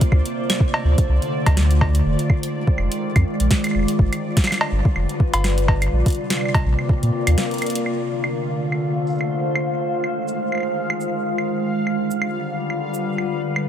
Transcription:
Already playing: C3 A#3 F4 C5 D5
0.01 kick, closed hi-hat
0.12 D2 D3, kick, claves
0.25 A3, closed hi-hat
0.50 snare, closed hi-hat, claves
0.60 kick
0.74 cowbell
0.85 D2
0.98 kick, closed hi-hat
1.09 C2
1.22 closed hi-hat
1.46 D2, kick, closed hi-hat, cowbell, claves
1.57 snare
1.71 closed hi-hat
1.81 kick, cowbell
1.95 closed hi-hat
2.05 F1 D#3
2.19 G#3, closed hi-hat
2.30 kick, claves
2.43 closed hi-hat
2.67 kick
2.78 F1, claves
2.92 closed hi-hat
3.16 F2, kick, closed hi-hat, claves
3.40 A#1, closed hi-hat
3.51 kick, snare
3.64 closed hi-hat, claves
3.67 claves
3.71 claves
3.75 F1, claves
3.79 claves
3.83 claves
3.88 closed hi-hat
3.99 G1 D3, kick
4.13 G3, closed hi-hat, claves
4.37 kick, snare, closed hi-hat
4.44 snare, claves
4.51 snare, claves
4.54 claves
4.58 cowbell, claves
4.61 B4, claves
4.64 claves
4.69 G1, claves
4.85 kick
4.96 F1, claves
5.09 closed hi-hat
5.20 kick
5.34 G1, closed hi-hat, cowbell
5.44 snare, claves
5.58 closed hi-hat
5.68 kick, cowbell
5.82 closed hi-hat, claves
5.93 A#1 C3
6.06 kick, closed hi-hat
6.08 closed hi-hat
6.10 closed hi-hat
6.12 closed hi-hat
6.15 closed hi-hat
6.30 snare, closed hi-hat, claves
6.33 A#3, claves
6.37 claves
6.41 claves
6.45 claves
6.49 claves
6.54 kick, closed hi-hat, cowbell
6.65 A#1
6.79 A#4, claves
6.89 kick
7.03 A#2, closed hi-hat
7.27 D#2, closed hi-hat, claves
7.38 snare
7.51 closed hi-hat
7.54 closed hi-hat
7.58 closed hi-hat
7.62 closed hi-hat, claves
7.66 closed hi-hat
7.70 closed hi-hat
7.75 closed hi-hat
7.86 D3 F5, claves
8.17 A3
8.24 cabasa, claves
8.56 C5
8.72 claves
9.07 cabasa
9.10 cabasa
9.12 cabasa
9.15 cabasa
9.18 cabasa, claves
9.55 claves
9.80 D#3
10.02 G#3, claves
10.28 cabasa
10.52 claves
10.55 claves
10.58 claves
10.60 claves
10.90 claves
11.01 cabasa
11.38 claves
11.73 D3
11.87 G3, claves
12.11 cabasa
12.22 claves
12.61 B4
12.70 claves
12.94 cabasa
13.18 claves
13.56 claves

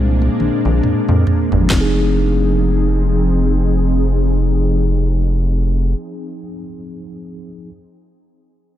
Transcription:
Already playing: C2 A#2 G#3 A#3 C4 D4 G#4 C5
0.22 high tom
0.40 A#1, mid tom
0.65 A#1, mid tom
0.83 F2, mid tom
1.09 F2, mid tom
1.27 floor tom
1.52 G1, floor tom
1.61 F3
1.68 F1 F3 C4 D#4 G#4, kick, clap
1.72 D#4, snare
1.81 G#4

